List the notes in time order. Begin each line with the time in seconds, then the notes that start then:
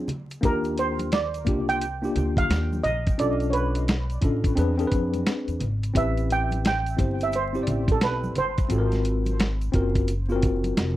0.08 closed hi-hat, low conga, shaker
0.31 closed hi-hat, shaker
0.41 D#2 A#3 D4 F4 G4, kick, closed hi-hat, shaker
0.45 A#4
0.64 closed hi-hat, shaker
0.78 C5, closed hi-hat, shaker
0.99 closed hi-hat, high conga, shaker
1.12 D5, snare, closed hi-hat, high conga, shaker
1.34 closed hi-hat, shaker
1.45 C2 A#3 D4 F4 G4, kick, closed hi-hat, low conga, shaker
1.69 G5, closed hi-hat, shaker
1.81 closed hi-hat, shaker
2.02 A#3 D4 F4 G4, shaker
2.16 D2, closed hi-hat, low conga, shaker
2.37 F5, kick, closed hi-hat, high conga, shaker
2.50 D#2, snare, closed hi-hat, shaker
2.73 high conga, shaker
2.84 A#1 D#5, closed hi-hat, low conga, shaker
3.07 kick, closed hi-hat, shaker
3.18 B1 C#4 D4 F4 A4 D5, closed hi-hat, shaker
3.40 closed hi-hat, shaker
3.50 B4 C#5, closed hi-hat
3.55 shaker
3.75 closed hi-hat, shaker
3.88 snare, closed hi-hat, shaker
4.10 closed hi-hat, shaker
4.21 A1 C#4 D4 F4 A4, kick, closed hi-hat, low conga, shaker
4.44 kick, closed hi-hat, shaker
4.55 E2 C4 D4 G#4 B4, closed hi-hat, high conga, shaker
4.78 C4 D4 G#4 A#4, closed hi-hat, shaker
4.87 B4
4.92 F2, kick, closed hi-hat, shaker
5.14 closed hi-hat, high conga, shaker
5.26 snare, closed hi-hat, shaker
5.47 E2, closed hi-hat, shaker
5.60 G#1, closed hi-hat, low conga, shaker
5.83 closed hi-hat, shaker
5.94 A1 C4 E4 G4 B4 E5, kick, closed hi-hat, shaker
6.17 closed hi-hat, shaker
6.30 G5, closed hi-hat, shaker
6.51 closed hi-hat, high conga, shaker
6.65 G5, snare, closed hi-hat, high conga, shaker
6.86 closed hi-hat, shaker
6.96 G1 C4 E4 G4 C5, kick, closed hi-hat, low conga, shaker
7.20 E5, closed hi-hat, shaker
7.32 C5, closed hi-hat, shaker
7.53 C4 E4 G4 C5, shaker
7.63 A1 D5, closed hi-hat
7.67 low conga, shaker
7.88 A4, kick, closed hi-hat, high conga, shaker
8.01 B1 B4, snare, closed hi-hat, shaker
8.24 high conga, shaker
8.36 G1 C5, closed hi-hat, low conga, shaker
8.58 kick, closed hi-hat, shaker
8.68 G#1 C4 F4 F#4 A4, closed hi-hat, shaker
8.78 A#4
8.92 snare, closed hi-hat, shaker
9.04 closed hi-hat, shaker
9.26 closed hi-hat, high conga, shaker
9.39 snare, closed hi-hat, high conga, shaker
9.61 closed hi-hat, shaker
9.72 F#1 C4 F4 F#4 A#4, kick, closed hi-hat, low conga, shaker
9.95 kick, closed hi-hat, shaker
10.08 closed hi-hat, shaker
10.29 B3 F4 F#4 A#4, shaker
10.36 C4
10.42 kick, closed hi-hat, low conga, shaker
10.64 closed hi-hat, high conga, shaker
10.77 F1, snare, closed hi-hat, shaker